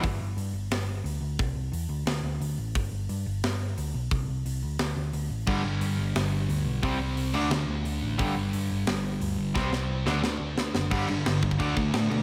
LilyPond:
<<
  \new Staff \with { instrumentName = "Distorted electric guitar" } { \clef bass \time 4/4 \key g \major \tempo 4 = 176 r1 | r1 | r1 | r1 |
<g, d g>1 | <c g c'>4. <d a d'>2~ <d a d'>8 | <g, d g>1 | <c g c'>4. <d a d'>2~ <d a d'>8 |
<g, d g>2 <d a d'>2 | }
  \new Staff \with { instrumentName = "Distorted electric guitar" } { \clef bass \time 4/4 \key g \major r1 | r1 | r1 | r1 |
<g, d g>8 r2. r8 | <c g c'>8 r4 <d a d'>8 r2 | <g, d g>8 r2. r8 | <c g c'>8 r4 <d a d'>8 r2 |
<g, d g>8 <g, d>8 <g, d>8 <g, d>8 <d a d'>8 <d a>8 <d a>8 <d a>8 | }
  \new Staff \with { instrumentName = "Overdriven electric guitar" } { \clef bass \time 4/4 \key g \major r1 | r1 | r1 | r1 |
<g, d g>8 r2. r8 | <c g c'>8 r4 <d a d'>8 r2 | <g, d g>8 r2. r8 | <c g c'>8 r4 <d a d'>8 r2 |
<g, d g>8 <g, d>8 <g, d>8 <g, d>8 <d a d'>8 <d a>8 <d a>8 <d a>8 | }
  \new Staff \with { instrumentName = "Picked electric bass" } { \clef bass \time 4/4 \key g \major g,,8 g,,8 g,8 g,,8 g,,4 d,8 d,8 | c,8 c,8 e,8 d,8 d,8 d,8 d,8 a,,8 | g,,8 g,,8 g,8 g,,8 g,,4 d,8 b,,8 | c,8 c,8 c,8 d,8 d,8 d,8 d,8 a,,8 |
g,,8 g,,8 g,8 g,,8 g,,4 d,8 b,,8 | c,8 c,8 c,8 d,8 d,8 d,8 d,8 a,,8 | g,,8 g,,8 g,8 g,,8 g,,4 d,8 g,,8 | c,8 c,8 c,8 d,8 d,8 d,8 d,8 fis,,8 |
g,,8 g,,8 g,,8 g,,8 d,8 d,8 a,8 b,8 | }
  \new DrumStaff \with { instrumentName = "Drums" } \drummode { \time 4/4 <hho bd>4 hho4 <hho sn>4 hho4 | <hho bd>4 hho4 <hho sn>4 hho4 | <hho bd>4 hho4 <hho sn>4 hho4 | <hho bd>4 hho4 <hho sn>4 hho4 |
<cymc bd>4 hho4 <hho sn>4 hho4 | <hho bd>4 hho8 cymc8 sn4 hho4 | <hho bd>4 hho4 <hho sn>4 hho4 | <bd sn>8 sn8 r8 sn8 sn4 sn8 sn8 |
<cymc bd>8 cymc8 <cymc sn>8 <cymc bd>16 bd16 <cymc bd>8 <cymc bd>8 <cymc sn>8 cymc8 | }
>>